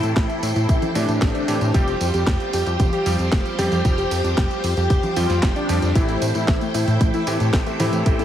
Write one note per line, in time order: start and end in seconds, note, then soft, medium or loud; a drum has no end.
0.00 0.14 A2 medium
0.00 0.92 E3 medium
0.00 0.92 A3 medium
0.00 0.92 C4 medium
0.00 0.10 E4 loud
0.00 1.70 E4 medium
0.00 0.92 G4 medium
0.00 1.70 A4 medium
0.00 8.25 C5 medium
0.00 1.70 G5 medium
0.00 closed hi-hat soft
0.00 tambourine soft
0.00 downlifter medium
0.16 0.27 A1 loud
0.16 0.50 E4 loud
0.16 kick loud
0.16 snare loud
0.16 clap loud
0.16 closed hi-hat medium
0.16 tambourine soft
0.30 closed hi-hat soft
0.30 tambourine soft
0.43 0.53 A2 loud
0.43 open hi-hat loud
0.43 tambourine medium
0.56 0.67 A2 loud
0.56 0.89 E4 medium
0.56 closed hi-hat soft
0.56 tambourine soft
0.69 0.80 A1 medium
0.69 kick loud
0.69 closed hi-hat medium
0.69 tambourine soft
0.82 closed hi-hat soft
0.82 tambourine soft
0.82 high conga medium
0.95 1.06 A2 loud
0.95 1.45 E3 medium
0.95 1.45 A3 medium
0.95 1.45 C4 medium
0.95 1.28 D4 loud
0.95 1.45 G4 loud
0.95 open hi-hat loud
0.95 tambourine medium
1.09 1.19 A2 loud
1.09 closed hi-hat soft
1.09 tambourine soft
1.22 1.32 A1 loud
1.22 kick loud
1.22 snare loud
1.22 clap medium
1.22 closed hi-hat medium
1.22 tambourine soft
1.35 1.68 D4 loud
1.35 closed hi-hat soft
1.35 tambourine soft
1.48 1.59 A2 medium
1.48 1.71 E3 loud
1.48 1.71 A3 medium
1.48 1.71 C4 medium
1.48 1.71 G4 loud
1.48 open hi-hat loud
1.48 tambourine medium
1.61 1.72 A2 loud
1.61 closed hi-hat soft
1.61 tambourine soft
1.74 1.96 F1 loud
1.74 3.03 F3 medium
1.74 3.03 G3 medium
1.74 3.03 C4 medium
1.74 5.91 F4 medium
1.74 5.91 G4 medium
1.74 3.03 G4 medium
1.74 2.08 G4 loud
1.74 8.25 G5 medium
1.74 kick loud
1.74 closed hi-hat loud
1.74 tambourine soft
1.88 closed hi-hat soft
1.88 tambourine soft
2.01 2.11 F2 loud
2.01 open hi-hat loud
2.01 tambourine medium
2.14 2.25 F2 medium
2.14 2.47 G4 loud
2.14 closed hi-hat soft
2.14 tambourine soft
2.27 2.38 F1 loud
2.27 kick loud
2.27 snare loud
2.27 clap medium
2.27 closed hi-hat loud
2.27 tambourine soft
2.40 closed hi-hat soft
2.40 tambourine soft
2.53 2.64 F2 loud
2.53 2.87 G4 loud
2.53 open hi-hat loud
2.53 tambourine medium
2.66 2.77 F2 loud
2.66 closed hi-hat soft
2.66 tambourine soft
2.80 2.90 F1 loud
2.80 kick loud
2.80 closed hi-hat medium
2.80 tambourine soft
2.80 high conga medium
2.93 3.15 G4 medium
2.93 closed hi-hat soft
2.93 tambourine soft
3.06 3.17 F2 medium
3.06 3.55 F3 medium
3.06 3.55 G3 medium
3.06 3.55 C4 medium
3.06 3.55 G4 loud
3.06 open hi-hat loud
3.06 tambourine medium
3.19 3.30 F2 medium
3.19 closed hi-hat soft
3.19 tambourine soft
3.32 3.43 F1 medium
3.32 kick loud
3.32 snare loud
3.32 clap medium
3.32 closed hi-hat medium
3.32 tambourine soft
3.46 closed hi-hat soft
3.46 tambourine soft
3.59 3.69 F2 medium
3.59 3.82 F3 loud
3.59 3.82 G3 medium
3.59 3.82 C4 medium
3.59 3.92 G4 loud
3.59 3.82 G4 loud
3.59 open hi-hat loud
3.59 tambourine medium
3.59 high conga medium
3.72 3.82 F2 loud
3.72 closed hi-hat soft
3.72 tambourine soft
3.85 4.06 F1 loud
3.85 5.13 F3 medium
3.85 5.13 G3 medium
3.85 5.13 C4 medium
3.85 5.13 G4 medium
3.85 kick loud
3.85 closed hi-hat medium
3.85 tambourine soft
3.98 4.31 G4 loud
3.98 closed hi-hat soft
3.98 tambourine soft
4.11 4.22 F2 loud
4.11 open hi-hat loud
4.11 tambourine medium
4.24 4.35 F2 medium
4.24 closed hi-hat soft
4.24 tambourine soft
4.37 4.48 F1 loud
4.37 4.71 G4 medium
4.37 kick loud
4.37 snare loud
4.37 clap medium
4.37 closed hi-hat medium
4.37 tambourine soft
4.51 closed hi-hat soft
4.51 tambourine soft
4.64 4.74 F2 loud
4.64 open hi-hat loud
4.64 tambourine medium
4.77 4.88 F2 loud
4.77 5.10 G4 medium
4.77 closed hi-hat soft
4.77 tambourine soft
4.90 5.01 F1 medium
4.90 kick loud
4.90 closed hi-hat medium
4.90 tambourine soft
5.03 closed hi-hat soft
5.03 tambourine soft
5.03 high conga medium
5.16 5.27 F2 loud
5.16 5.66 F3 medium
5.16 5.66 G3 medium
5.16 5.66 C4 medium
5.16 5.50 F4 medium
5.16 5.66 G4 loud
5.16 open hi-hat loud
5.16 tambourine medium
5.30 5.40 F2 loud
5.30 snare soft
5.30 closed hi-hat soft
5.30 tambourine soft
5.43 5.53 F1 loud
5.43 kick loud
5.43 snare loud
5.43 clap medium
5.43 closed hi-hat medium
5.43 tambourine soft
5.56 5.89 D4 loud
5.56 closed hi-hat soft
5.56 tambourine soft
5.69 5.80 F2 medium
5.69 5.92 F3 loud
5.69 5.92 G3 medium
5.69 5.92 C4 medium
5.69 5.92 G4 loud
5.69 open hi-hat loud
5.69 tambourine medium
5.82 5.93 F2 medium
5.82 closed hi-hat soft
5.82 tambourine soft
5.95 6.17 A1 loud
5.95 7.24 E3 medium
5.95 7.24 A3 medium
5.95 6.08 A3 medium
5.95 7.24 C4 medium
5.95 8.25 E4 medium
5.95 6.29 E4 loud
5.95 7.24 G4 medium
5.95 8.25 A4 medium
5.95 kick loud
5.95 closed hi-hat medium
5.95 tambourine soft
6.09 6.14 A3 loud
6.09 closed hi-hat soft
6.09 tambourine soft
6.22 6.32 A2 loud
6.22 6.28 C4 loud
6.22 open hi-hat loud
6.22 tambourine medium
6.35 6.44 A2 medium
6.35 6.46 A2 medium
6.35 6.68 E4 loud
6.35 closed hi-hat soft
6.35 tambourine soft
6.48 6.59 A1 loud
6.48 6.60 A3 medium
6.48 kick loud
6.48 snare loud
6.48 clap medium
6.48 closed hi-hat medium
6.48 tambourine soft
6.61 6.67 A3 loud
6.61 closed hi-hat soft
6.61 tambourine soft
6.74 6.85 A2 loud
6.74 6.80 C4 loud
6.74 7.08 E4 loud
6.74 open hi-hat loud
6.74 tambourine medium
6.88 6.97 A2 medium
6.88 6.98 A2 loud
6.88 closed hi-hat soft
6.88 tambourine soft
7.01 7.11 A1 loud
7.01 7.13 A3 medium
7.01 kick loud
7.01 closed hi-hat medium
7.01 tambourine soft
7.01 high conga medium
7.14 7.20 A3 loud
7.14 7.36 E4 medium
7.14 closed hi-hat soft
7.14 tambourine soft
7.27 7.38 A2 medium
7.27 7.76 E3 medium
7.27 7.76 A3 medium
7.27 7.76 C4 medium
7.27 7.33 C4 loud
7.27 7.76 G4 loud
7.27 open hi-hat loud
7.27 tambourine medium
7.40 7.51 A2 medium
7.40 7.50 A2 medium
7.40 closed hi-hat soft
7.40 tambourine soft
7.53 7.64 A1 medium
7.53 7.65 A3 medium
7.53 kick loud
7.53 snare loud
7.53 clap medium
7.53 closed hi-hat medium
7.53 tambourine soft
7.67 7.72 A3 loud
7.67 closed hi-hat soft
7.67 tambourine soft
7.80 7.90 A2 medium
7.80 8.03 E3 medium
7.80 8.03 A3 medium
7.80 8.03 C4 medium
7.80 7.85 C4 loud
7.80 8.13 E4 loud
7.80 8.03 G4 loud
7.80 open hi-hat loud
7.80 tambourine medium
7.80 high conga medium
7.93 8.03 A2 medium
7.93 8.02 A2 medium
7.93 closed hi-hat soft
7.93 tambourine soft
8.06 8.25 A1 loud
8.06 8.25 E3 medium
8.06 8.25 A3 medium
8.06 8.18 A3 medium
8.06 8.25 C4 medium
8.06 8.25 G4 medium
8.06 kick loud
8.06 closed hi-hat medium
8.06 tambourine soft
8.19 8.25 A3 loud
8.19 8.25 E4 loud
8.19 closed hi-hat soft
8.19 tambourine soft